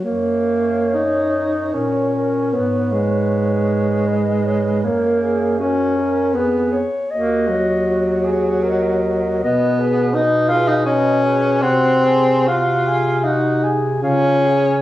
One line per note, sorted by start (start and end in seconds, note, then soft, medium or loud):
0.04 1.69 F#2 soft
0.04 0.95 A#3 medium
0.04 1.74 C#5 soft
0.04 4.09 C#5 soft
0.94 1.76 D#4 medium
1.73 2.54 A#2 soft
1.73 2.55 C#4 soft
1.73 2.13 A#4 soft
2.14 2.54 A#4 soft
2.53 4.84 G#2 soft
2.53 2.94 B3 soft
2.53 4.09 B4 soft
2.92 4.86 G#3 medium
4.07 4.85 B4 soft
4.07 4.47 D#5 soft
4.46 4.82 C#5 soft
4.83 6.36 F#2 soft
4.83 5.58 A#3 medium
4.83 5.20 A#4 soft
4.83 5.56 C#5 soft
5.21 5.60 G#4 soft
5.58 6.36 C#4 medium
5.58 5.98 F#4 soft
5.58 6.32 A#4 soft
5.96 6.34 A#4 soft
6.34 6.83 F2 soft
6.34 6.84 B3 medium
6.34 6.82 G#4 soft
6.34 6.74 B4 soft
6.72 7.12 C#5 soft
7.10 9.39 D#2 medium
7.10 7.50 A#3 medium
7.10 7.83 F#4 soft
7.10 8.36 D#5 soft
7.48 9.43 F#3 medium
7.88 8.26 F#4 soft
8.25 8.64 G#4 soft
8.62 9.43 A#4 soft
8.62 9.39 D#5 soft
9.43 11.63 B2 medium
9.43 10.15 B3 medium
9.43 9.81 B4 soft
9.43 9.82 D#5 medium
9.79 10.16 G#4 soft
9.79 10.16 B4 soft
10.14 10.50 D#4 medium
10.14 10.52 B4 soft
10.14 10.51 D#5 soft
10.49 10.70 F4 medium
10.49 10.86 G#4 soft
10.49 10.86 B4 soft
10.68 10.85 D#4 medium
10.86 11.63 C#4 medium
10.86 11.26 B4 soft
10.86 11.25 D#5 soft
11.24 11.62 G#4 soft
11.24 11.61 B4 soft
11.61 14.01 C3 medium
11.61 12.49 C4 medium
11.61 12.06 F#4 medium
11.61 12.07 F#5 medium
12.04 12.49 G#4 medium
12.04 12.50 G#5 soft
12.47 13.26 F4 medium
12.47 12.88 F#4 soft
12.47 12.89 F#5 soft
12.87 13.24 G#4 soft
12.87 13.24 G#5 soft
13.24 13.74 D#4 medium
13.24 13.65 F#4 medium
13.24 13.65 F#5 soft
13.63 14.01 G#4 soft
13.63 14.02 G#5 soft
14.01 14.82 C#3 medium
14.01 14.82 C#4 medium
14.01 14.46 F4 medium
14.01 14.47 F5 medium
14.45 14.76 G#4 soft
14.45 14.82 G#5 soft